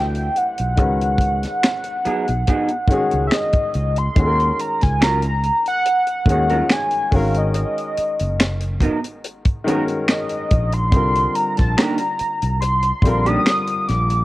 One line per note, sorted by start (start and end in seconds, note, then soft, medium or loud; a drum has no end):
0.00 0.28 D2 medium
0.00 0.64 E3 medium
0.00 0.64 A3 medium
0.00 0.65 D4 medium
0.00 0.66 G4 medium
0.00 0.66 C5 medium
0.00 0.39 G5 medium
0.15 closed hi-hat soft
0.36 3.26 F#5 medium
0.36 closed hi-hat soft
0.58 0.78 B1 medium
0.58 closed hi-hat medium
0.77 1.45 C#2 medium
0.77 2.28 D#3 medium
0.77 2.29 G#3 medium
0.77 2.29 C#4 medium
0.77 2.30 F#4 medium
0.77 kick loud
0.77 closed hi-hat medium
0.82 2.30 B4 medium
1.01 closed hi-hat soft
1.18 kick medium
1.18 closed hi-hat medium
1.43 snare soft
1.43 closed hi-hat soft
1.63 finger snap medium
1.63 muted clean electric guitar stroke soft
1.63 snare loud
1.63 closed hi-hat medium
1.84 closed hi-hat soft
2.05 2.25 F#3 medium
2.05 2.25 B3 medium
2.05 2.25 D#4 medium
2.05 2.25 G#4 medium
2.05 muted fretless electric bass stroke soft
2.05 closed hi-hat soft
2.28 2.44 B1 medium
2.28 closed hi-hat soft
2.47 2.67 F#3 medium
2.47 2.67 B3 medium
2.47 2.68 D#4 medium
2.47 2.68 G#4 medium
2.47 kick medium
2.47 closed hi-hat medium
2.68 closed hi-hat soft
2.87 4.02 D#3 medium
2.87 4.02 G#3 medium
2.87 4.03 C#4 medium
2.87 muted fretless electric bass stroke soft
2.87 kick loud
2.87 closed hi-hat medium
2.92 4.03 F#4 medium
2.92 4.04 G#4 medium
3.11 3.28 C#2 medium
3.11 closed hi-hat soft
3.27 3.35 E5 medium
3.31 3.99 D#5 medium
3.31 finger snap medium
3.31 snare medium
3.31 closed hi-hat medium
3.52 kick medium
3.52 closed hi-hat soft
3.74 4.08 C#2 medium
3.74 closed hi-hat soft
3.96 4.62 C6 loud
3.96 closed hi-hat soft
4.15 4.50 D#2 medium
4.15 5.66 D#3 medium
4.15 5.67 G#3 medium
4.15 5.67 C#4 medium
4.15 5.68 F#4 medium
4.15 kick loud
4.15 closed hi-hat medium
4.20 4.25 A4 medium
4.27 5.72 A#4 medium
4.40 closed hi-hat soft
4.59 4.84 A#5 medium
4.59 closed hi-hat medium
4.81 5.49 C#2 medium
4.81 5.04 G#5 medium
4.81 kick medium
4.81 snare soft
4.81 closed hi-hat soft
5.01 5.20 F#3 medium
5.01 5.21 C#4 medium
5.01 5.21 F4 medium
5.01 5.21 A#4 medium
5.01 5.67 A#5 loud
5.01 finger snap medium
5.01 snare loud
5.01 closed hi-hat medium
5.22 closed hi-hat soft
5.43 closed hi-hat soft
5.66 6.25 F#5 loud
5.66 closed hi-hat soft
5.86 closed hi-hat medium
6.07 closed hi-hat soft
6.26 6.60 D#2 medium
6.26 7.10 D#3 medium
6.26 7.11 G#3 medium
6.26 7.12 C#4 medium
6.26 kick loud
6.26 closed hi-hat medium
6.30 7.13 F#4 medium
6.30 7.14 G#4 medium
6.30 6.74 F#5 medium
6.50 6.64 F#3 soft
6.50 6.64 C#4 medium
6.50 6.64 F4 medium
6.50 6.64 A#4 medium
6.50 closed hi-hat soft
6.70 7.16 G#5 medium
6.70 finger snap medium
6.70 snare loud
6.70 closed hi-hat medium
6.91 closed hi-hat soft
7.11 7.63 G#1 medium
7.11 8.62 D#3 medium
7.11 8.62 G#3 medium
7.11 8.63 C#4 medium
7.11 8.64 F#4 medium
7.11 7.36 F5 medium
7.11 kick medium
7.11 open hi-hat soft
7.16 8.64 A#4 medium
7.34 8.59 D#5 medium
7.34 closed hi-hat medium
7.54 closed hi-hat medium
7.78 closed hi-hat soft
7.97 muted fretless electric bass stroke soft
7.97 closed hi-hat medium
8.19 8.87 F#1 medium
8.19 closed hi-hat soft
8.40 finger snap medium
8.40 snare loud
8.40 closed hi-hat medium
8.60 closed hi-hat soft
8.80 8.96 F#3 medium
8.80 8.97 B3 medium
8.80 8.97 D#4 medium
8.80 8.97 A#4 medium
8.80 kick medium
8.80 closed hi-hat medium
9.04 closed hi-hat soft
9.24 closed hi-hat medium
9.45 kick medium
9.45 closed hi-hat soft
9.64 10.78 D#3 medium
9.64 9.81 F#3 medium
9.64 10.78 G#3 medium
9.64 9.82 B3 medium
9.64 10.79 C#4 medium
9.64 9.82 D#4 medium
9.64 10.80 F#4 medium
9.64 closed hi-hat medium
9.69 9.82 A#4 medium
9.69 10.80 A#4 medium
9.88 closed hi-hat soft
10.08 10.75 D#5 medium
10.08 finger snap medium
10.08 snare medium
10.08 closed hi-hat medium
10.29 closed hi-hat soft
10.51 10.93 A#1 medium
10.51 kick medium
10.51 closed hi-hat medium
10.72 11.37 C6 loud
10.72 closed hi-hat soft
10.91 11.26 C2 loud
10.91 12.42 D3 medium
10.91 12.43 G3 medium
10.91 12.44 C4 medium
10.91 12.44 F4 medium
10.91 kick loud
10.91 closed hi-hat medium
10.96 12.45 A#4 medium
11.15 closed hi-hat soft
11.35 11.57 A#5 medium
11.35 closed hi-hat medium
11.57 11.74 A#1 medium
11.57 11.79 A5 medium
11.57 kick medium
11.57 snare soft
11.57 closed hi-hat soft
11.77 11.97 D#3 medium
11.77 11.97 A#3 medium
11.77 11.97 D4 medium
11.77 11.97 G4 medium
11.77 12.60 A#5 medium
11.77 finger snap medium
11.77 snare loud
11.77 closed hi-hat medium
11.98 closed hi-hat soft
12.19 muted fretless electric bass stroke soft
12.19 closed hi-hat medium
12.42 12.91 C2 medium
12.42 closed hi-hat soft
12.61 13.28 C6 loud
12.61 closed hi-hat medium
12.83 closed hi-hat soft
13.02 13.37 A#1 medium
13.02 14.16 D3 medium
13.02 14.17 G3 medium
13.02 14.17 C4 medium
13.02 kick medium
13.02 closed hi-hat medium
13.07 14.18 F4 medium
13.07 14.19 A#4 medium
13.26 13.40 D#3 soft
13.26 13.40 A#3 soft
13.26 13.40 D4 medium
13.26 13.40 G4 medium
13.26 13.89 D#6 loud
13.26 closed hi-hat soft
13.46 finger snap medium
13.46 snare medium
13.46 closed hi-hat medium
13.67 closed hi-hat soft
13.88 14.22 A#1 medium
13.88 14.25 D6 loud
13.88 snare soft
13.88 closed hi-hat medium
14.10 closed hi-hat medium